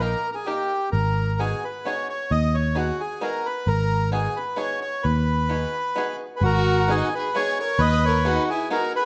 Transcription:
Already playing: A#1
0.00 A#3 D#4 G4 A#4
0.32 G#4 A#4
0.46 A#3 D#4 G4 A#4
0.92 G#1 A#4
1.39 B3 D#4 F#4 G#4
1.64 B4
1.85 B3 D#4 F#4 G#4 C#5
2.09 C#5
2.31 D#2 D#5
2.55 C#5
2.75 B3 D#4 F#4 G#4
3.00 G#4
3.21 B3 D#4 F#4 G#4 A#4
3.46 B4
3.67 G#1 A#4
4.12 B3 D#4 F#4 G#4
4.36 B4
4.56 B3 D#4 F#4 G#4 C#5
4.81 C#5
5.03 D#2 B4
5.49 B3 D#4 F#4 G#4
5.95 B3 D#4 F#4 G#4
6.36 G#4 B4
6.41 G#1 F#4
6.45 F#4 A#4
6.88 B3 D#4 F#4 G#4
7.14 G#4 B4
7.35 B3 D#4 F#4 G#4 C#5
7.60 A#4 C#5
7.79 D#2 B4 D#5
7.84 B4
8.05 A#4 C#5
8.25 B3 D#4 F#4 G#4
8.50 E4 G#4
8.70 B3 D#4 F#4 G#4 A#4
8.96 G#4 B4

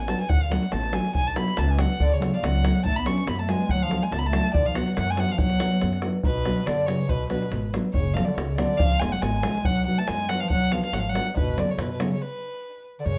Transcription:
Already playing: A1
0.00 G#5
0.07 F#3 B3 D4 F#4 A5, davul high
0.20 G#5, davul high
0.29 D2 F#5, davul low
0.42 F5
0.50 F#3 A3 D4 F#4 F#5, davul high
0.63 davul high
0.72 A1 A5, davul high
0.83 davul high
0.92 F#3 A3 D4 F#4 G#5, davul high
1.05 davul high
1.15 B1 G#5, davul low
1.27 A5
1.35 F#3 B3 D4 F#4 B5, davul high
1.48 davul high
1.57 C#2 A5, davul high
1.68 G#5, davul high
1.77 F#3 B3 D4 F#4 F#5, davul high
1.91 davul high
2.00 D2 D3 D5, davul low
2.12 C#3 C#5, davul high
2.19 F#3 A3 D4 F#4, davul high
2.34 F3 D5 F5, davul high
2.39 F3 F5
2.43 C#2 F#3 F#5, davul high
2.56 davul high
2.62 F#3 A3 D4 F#4, davul high
2.76 davul high
2.85 B1 A3 A5, davul low
2.96 B3 B5
3.05 F#3 B3 C#4 D4 F#4 C#6, davul high
3.18 davul high
3.27 F#2 B3 B5, davul high
3.35 B3 B5, davul high
3.39 A3 A5
3.48 F#3 G#3 B3 D4 F#4 G#5, davul high
3.60 davul high
3.69 D2 F#3 F#5, davul low
3.82 F3 F5
3.89 F#3 A3 D4 F#4, davul high
4.02 G#3 G#5, davul high
4.12 C#2 A3 A5, davul high
4.17 B3 B5
4.24 A3 A5, davul high
4.32 F#3 A3 D4 F#4, davul high
4.45 davul high
4.54 B1 D3 D5, davul low
4.66 F3 F5
4.75 F#3 B3 D4 F#4 F#5, davul high
4.88 davul high
4.97 F#2 F#3 F#5, davul high
5.08 G#3 G#5, davul high
5.17 F#3 B3 D4 F#4 F#5, davul high
5.29 F3 F5, davul high
5.38 B1 F#3 F#5, davul low
5.50 davul high
5.60 F#3 B3 D4 F#4, davul high
5.72 davul high
5.81 F#2, davul high
5.93 davul high
6.02 F#3 B3 D4 F#4, davul high
6.23 B1 B2 B4, davul low
6.45 F#3 B3 D4 F#4, davul high
6.58 davul high
6.66 F#2 D3 D5, davul high
6.86 C#3 F#3 B3 D4 F#4 C#5, davul high
7.08 B1 B2 B4, davul low
7.30 B2 F#3 B3 D4 F#4 B4, davul high
7.42 davul high
7.51 G#1, davul high
7.73 F#3 B3 D4 F#4, davul high
7.93 F#1 C#3 C#5, davul low
8.14 F3 F#3 A3 C#4 F#4 F5, davul high
8.25 D3 D5, davul high
8.34 C#2 C#3 C#5, davul high
8.46 C#3 C#5
8.55 D3 F#3 A3 C#4 D5, davul high
8.60 F#4
8.77 C#2 F3 F5, davul low
8.92 davul high
8.99 F1 F3 G#3 C#4 F4 G#5, davul high
9.12 F#3 F#5, davul high
9.21 G#1 G#3 G#5, davul high
9.35 davul high
9.43 B1 F3 G#3 C#4 F4, davul high
9.55 davul high
9.64 B1 F#3 F#5, davul low
9.86 F#3 B3 D4 F#4 F#5
9.98 A3 A5, davul high
10.07 F#2 G#3 G#5, davul high
10.29 F#3 B3 D4 F#4 F#5, davul high
10.40 F3 F5
10.50 B1 F#3 F#5, davul low
10.72 F3 F#3 B3 D4 F#4 F5, davul high
10.83 F3 F5, davul high
10.93 G#1 F#3 F#5, davul high
10.99 F3 F5
11.08 F#3 F#5
11.15 F#3 B3 D4 F#4, davul high
11.36 F#1 B2 B4, davul low
11.56 D3 F#3 A3 C#4 F#4 D5, davul high
11.69 C#3 C#5, davul high
11.77 F#2 B2 B4, davul high
11.92 B2 B4
11.99 C#3 F#3 A3 C#4 F#4 C#5, davul high
12.13 C#3 C#5
12.22 B4
12.99 D3 D5
13.05 F#2 C#3 C#5

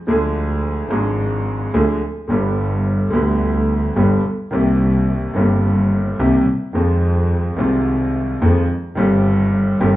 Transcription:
0.07 D2 D3 F3 G#3 D4 G#4
0.89 G#1 G#2 F3 G#3 D4
0.93 G#4
1.74 D2 D3 F3 G#3 D4 G#4
2.28 G1 G2 D3 G3 B3
2.32 G4
3.10 D2 D3 G3 B3
3.15 G4
3.96 G1 G2 D3 G3 B3 G4
4.51 C2 C3 D#3 A#3 C4 G4
5.34 G1 G2 D#3 A#3 C4 G4
6.19 C2 C3 D#3 A#3 C4 G4
6.73 F2 D#3 F3 G#3 C4 F4
7.57 C2 C3 D#3 G#3 C4 F4
8.42 F2 D#3 F3 G#3 C4 F4
8.95 G1 G2 D#3 G3 C4 G4
9.80 G1 G2 D#3 G3 C4 G4

